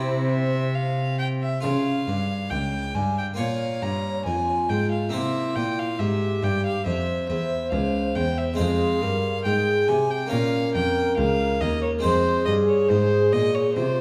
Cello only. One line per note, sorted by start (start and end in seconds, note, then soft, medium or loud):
0.00 1.40 C3 medium
1.64 2.04 C#3 medium
2.07 2.48 G2 medium
2.51 2.92 C#2 soft
2.94 3.35 G2 medium
3.38 3.79 A#2 medium
3.82 4.23 G2 medium
4.25 4.66 F2 soft
4.69 5.09 G#2 medium
5.12 5.53 C3 medium
5.56 5.96 A#2 medium
5.99 6.40 G#2 medium
6.43 6.83 G2 medium
6.86 7.26 F2 medium
7.29 7.69 E2 medium
7.72 8.12 C#2 medium
8.16 8.56 E2 medium
8.59 8.99 F2 medium
9.02 9.42 G2 medium
9.46 9.86 G#2 medium
9.89 10.29 C3 medium
10.32 10.72 A#2 medium
10.75 11.15 F2 medium
11.18 11.58 C#2 medium
11.61 12.01 D#2 medium
12.04 12.44 F2 medium
12.47 12.87 G2 medium
12.90 13.30 G#2 medium
13.33 13.73 A#2 medium
13.76 14.01 C3 medium